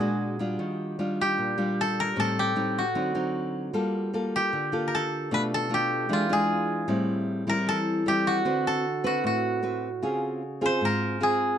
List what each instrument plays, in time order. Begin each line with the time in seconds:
Already playing: nylon-string guitar A#2, koto F#4 G#4
0.00 nylon-string guitar G#3 D4 F#4
0.39 nylon-string guitar G3 D4 F4
0.59 nylon-string guitar D#3
0.99 nylon-string guitar G3 D4 F4
1.21 koto G4
1.38 nylon-string guitar A#2
1.58 nylon-string guitar G3 D4 F4
1.81 koto A4
2.00 koto A#4
2.16 nylon-string guitar A2 G3 C4 D#4, koto A4
2.39 koto G4
2.56 nylon-string guitar G3 C4 D#4
2.79 koto F#4
2.95 nylon-string guitar D3 F#3 C4 D#4
3.15 nylon-string guitar F#3 C4 D#4
3.73 nylon-string guitar G3 A#3 F4 A4
4.13 nylon-string guitar A#3 F4 A4
4.36 koto G4
4.53 nylon-string guitar D3
4.72 nylon-string guitar A#3 F4 A4
4.88 koto A#4
4.95 koto A4
5.31 nylon-string guitar B2 A3 D4 F4, koto B4
5.54 koto A4
5.69 nylon-string guitar A3 D4 F4
5.74 koto G4
6.09 nylon-string guitar E3 G#3 D4 F4
6.13 koto F4
6.29 nylon-string guitar G#3 D4 F4, koto G#4
6.88 nylon-string guitar A2 G3 C4 E4
7.47 nylon-string guitar G3 C4 E4, koto A#4
7.67 nylon-string guitar E3, koto A4
8.06 nylon-string guitar G3 C4 E4, koto G4
8.27 koto F#4
8.45 nylon-string guitar D3 C4 F#4 B4
8.67 koto A4
9.04 nylon-string guitar C4 F#4 B4, koto F#4
9.24 nylon-string guitar A2, koto F#4
9.63 nylon-string guitar C4 F#4 B4
10.02 nylon-string guitar C#3 C4 F4 G#4
10.61 nylon-string guitar C4 F4 G#4
10.66 koto C5
10.81 nylon-string guitar G#2
10.85 koto A#4
11.20 nylon-string guitar C4 F4 G#4, koto G#4